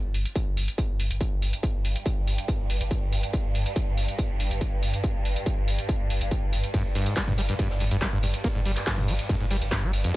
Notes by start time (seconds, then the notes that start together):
Already playing: G2
0.04 G1
0.14 G1, open hi-hat
0.25 closed hi-hat
0.36 kick, closed hi-hat
0.47 G1
0.57 G1, open hi-hat
0.68 closed hi-hat
0.78 kick, closed hi-hat
0.89 G1
0.99 G1, open hi-hat
1.10 G1, closed hi-hat
1.21 kick, closed hi-hat
1.32 G1
1.42 G1, open hi-hat
1.53 closed hi-hat
1.63 kick, closed hi-hat
1.74 G1
1.84 G1, open hi-hat
1.96 closed hi-hat
2.06 kick, closed hi-hat
2.17 G1
2.27 G1, open hi-hat
2.38 closed hi-hat
2.48 kick, closed hi-hat
2.59 G1
2.70 G1, open hi-hat
2.81 G1, closed hi-hat
2.91 kick, closed hi-hat
3.02 G1
3.12 G1, open hi-hat
3.23 closed hi-hat
3.33 kick, closed hi-hat
3.44 G1
3.55 G1, open hi-hat
3.66 closed hi-hat
3.76 kick, closed hi-hat
3.87 G1
3.97 G1, open hi-hat
4.08 closed hi-hat
4.19 kick, closed hi-hat
4.30 G1
4.40 G1, open hi-hat
4.51 G1, closed hi-hat
4.61 kick, closed hi-hat
4.72 G1
4.82 G1, open hi-hat
4.94 closed hi-hat
5.04 kick, closed hi-hat
5.15 G1
5.25 G1, open hi-hat
5.36 closed hi-hat
5.46 kick, closed hi-hat
5.57 G1
5.67 G1, open hi-hat
5.79 closed hi-hat
5.89 kick, closed hi-hat
6.00 G1
6.10 G1, open hi-hat
6.21 G1, closed hi-hat
6.31 kick, closed hi-hat
6.42 G1
6.53 G1, open hi-hat
6.64 closed hi-hat
6.74 G2, kick, closed hi-hat, ride
6.85 G1
6.95 G1 G2, snare, open hi-hat, ride
7.06 G#2, closed hi-hat, ride
7.16 G3, kick, snare, clap, closed hi-hat, ride
7.27 G1 G2, mid tom, ride
7.37 G1 G3, snare, open hi-hat, ride
7.49 G2, snare, closed hi-hat
7.59 G2, kick, closed hi-hat, ride
7.70 G1, snare
7.80 G1 G2, open hi-hat, ride
7.91 G1 G2, closed hi-hat
8.01 G3, kick, snare, clap, closed hi-hat, ride
8.12 G1 G2
8.23 G1 G2, open hi-hat, ride
8.34 closed hi-hat
8.44 A#3, kick, closed hi-hat, ride
8.55 G1 G#2
8.65 G1 G3, snare, open hi-hat, ride
8.76 clap, closed hi-hat, ride
8.87 G2, kick, snare, clap, closed hi-hat, open hi-hat
8.98 G1, mid tom, ride
9.08 G1 G3, open hi-hat, ride
9.19 closed hi-hat
9.29 G2, kick, closed hi-hat, ride
9.40 G1 G#2
9.50 G1 G3, snare, open hi-hat, ride
9.61 G1, closed hi-hat
9.71 G2, kick, snare, clap, closed hi-hat, ride
9.83 G1 G3
9.93 G1, open hi-hat, ride
10.04 F2, closed hi-hat